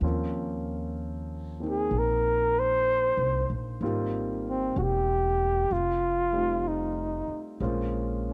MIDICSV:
0, 0, Header, 1, 5, 480
1, 0, Start_track
1, 0, Tempo, 947867
1, 11, Time_signature, 4, 2, 24, 8
1, 4219, End_track
2, 0, Start_track
2, 0, Title_t, "Flugelhorn"
2, 0, Program_c, 0, 56
2, 855, Note_on_c, 0, 68, 66
2, 1006, Note_on_c, 0, 70, 76
2, 1014, Note_off_c, 0, 68, 0
2, 1314, Note_on_c, 0, 72, 94
2, 1321, Note_off_c, 0, 70, 0
2, 1782, Note_off_c, 0, 72, 0
2, 2273, Note_on_c, 0, 60, 60
2, 2421, Note_on_c, 0, 66, 57
2, 2428, Note_off_c, 0, 60, 0
2, 2431, Note_on_c, 0, 67, 73
2, 2438, Note_off_c, 0, 66, 0
2, 2899, Note_on_c, 0, 65, 82
2, 2907, Note_off_c, 0, 67, 0
2, 3382, Note_on_c, 0, 63, 61
2, 3389, Note_off_c, 0, 65, 0
2, 3773, Note_off_c, 0, 63, 0
2, 4219, End_track
3, 0, Start_track
3, 0, Title_t, "Grand piano"
3, 0, Program_c, 1, 0
3, 0, Control_c, 1, 64, 127
3, 13, Note_on_c, 1, 58, 37
3, 14, Note_on_c, 1, 53, 38
3, 16, Note_on_c, 1, 60, 36
3, 18, Control_c, 1, 64, 0
3, 19, Note_on_c, 1, 61, 37
3, 21, Note_on_c, 1, 65, 43
3, 109, Control_c, 1, 64, 127
3, 803, Note_off_c, 1, 58, 0
3, 810, Note_off_c, 1, 60, 0
3, 811, Note_on_c, 1, 58, 29
3, 817, Note_on_c, 1, 60, 31
3, 825, Note_on_c, 1, 63, 35
3, 1928, Note_off_c, 1, 58, 0
3, 1929, Note_off_c, 1, 60, 0
3, 1930, Note_off_c, 1, 65, 0
3, 1933, Note_off_c, 1, 63, 0
3, 1934, Note_off_c, 1, 53, 0
3, 1934, Note_on_c, 1, 55, 51
3, 1935, Note_on_c, 1, 58, 42
3, 1936, Note_on_c, 1, 60, 40
3, 1937, Note_off_c, 1, 61, 0
3, 1938, Note_on_c, 1, 65, 51
3, 1940, Control_c, 1, 64, 0
3, 1940, Note_on_c, 1, 63, 40
3, 2043, Control_c, 1, 64, 127
3, 2890, Note_off_c, 1, 55, 0
3, 2891, Note_off_c, 1, 58, 0
3, 2891, Note_off_c, 1, 60, 0
3, 2892, Note_off_c, 1, 65, 0
3, 2893, Note_off_c, 1, 63, 0
3, 2895, Control_c, 1, 64, 0
3, 2979, Control_c, 1, 64, 127
3, 3200, Note_on_c, 1, 55, 38
3, 3203, Note_on_c, 1, 57, 30
3, 3210, Note_on_c, 1, 60, 34
3, 3223, Note_on_c, 1, 63, 34
3, 3227, Note_on_c, 1, 65, 38
3, 3844, Note_off_c, 1, 55, 0
3, 3846, Note_off_c, 1, 57, 0
3, 3849, Note_off_c, 1, 60, 0
3, 3851, Note_on_c, 1, 56, 40
3, 3853, Note_off_c, 1, 65, 0
3, 3853, Control_c, 1, 64, 0
3, 3855, Note_off_c, 1, 63, 0
3, 3855, Note_on_c, 1, 58, 40
3, 3856, Note_on_c, 1, 72, 35
3, 3859, Note_on_c, 1, 61, 34
3, 3861, Note_on_c, 1, 65, 47
3, 3945, Control_c, 1, 64, 127
3, 4219, Note_off_c, 1, 56, 0
3, 4219, Note_off_c, 1, 58, 0
3, 4219, Note_off_c, 1, 61, 0
3, 4219, Note_off_c, 1, 65, 0
3, 4219, Note_off_c, 1, 72, 0
3, 4219, End_track
4, 0, Start_track
4, 0, Title_t, "Upright bass"
4, 0, Program_c, 2, 32
4, 4, Note_on_c, 2, 39, 65
4, 951, Note_off_c, 2, 39, 0
4, 967, Note_on_c, 2, 34, 61
4, 1590, Note_off_c, 2, 34, 0
4, 1607, Note_on_c, 2, 36, 58
4, 1759, Note_off_c, 2, 36, 0
4, 1771, Note_on_c, 2, 34, 54
4, 1920, Note_off_c, 2, 34, 0
4, 1928, Note_on_c, 2, 32, 61
4, 2388, Note_off_c, 2, 32, 0
4, 2412, Note_on_c, 2, 28, 67
4, 2870, Note_off_c, 2, 28, 0
4, 2891, Note_on_c, 2, 29, 63
4, 3665, Note_off_c, 2, 29, 0
4, 3850, Note_on_c, 2, 34, 66
4, 4219, Note_off_c, 2, 34, 0
4, 4219, End_track
5, 0, Start_track
5, 0, Title_t, "Muted upright bass strokes"
5, 3686, Note_on_c, 9, 29, 30
5, 3737, Note_off_c, 9, 29, 0
5, 4219, End_track
0, 0, End_of_file